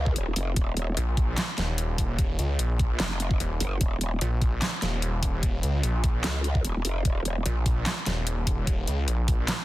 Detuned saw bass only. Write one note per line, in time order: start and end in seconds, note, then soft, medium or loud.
0.97 1.36 A#1 loud
1.58 2.37 D#1 loud
2.39 2.58 C#2 loud
2.59 2.98 A#1 loud
3.40 3.59 D#1 loud
4.21 4.60 A#1 loud
4.82 5.62 D#1 loud
5.63 5.82 C#2 loud
5.83 6.22 A#1 loud
7.46 7.85 A#1 loud
8.06 8.86 D#1 loud
8.88 9.06 C#2 loud
9.08 9.47 A#1 loud